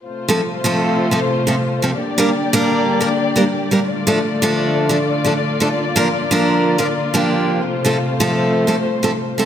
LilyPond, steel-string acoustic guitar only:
\new Staff \with { instrumentName = "Steel-string acoustic guitar" } { \time 4/4 \key f \mixolydian \tempo 4 = 127 r8 <f a c' a'>16 r8 <f a c' a'>4 <f a c' a'>16 r8 <f a c' a'>16 r8 <f a c' a'>16 | r8 <g bes d' bes'>16 r8 <g bes d' bes'>4 <g bes d' bes'>16 r8 <g bes d' bes'>16 r8 <g bes d' bes'>16 | r8 <f a d' a'>16 r8 <f a d' a'>4 <f a d' a'>16 r8 <f a d' a'>16 r8 <f a d' a'>16 | r8 <f bes d' bes'>16 r8 <f bes d' bes'>4 <f bes d' bes'>16 r8 <f bes d' g'>4 |
r8 <f a c' a'>16 r8 <f a c' a'>4 <f a c' a'>16 r8 <f a c' a'>16 r8 <f a c' a'>16 | }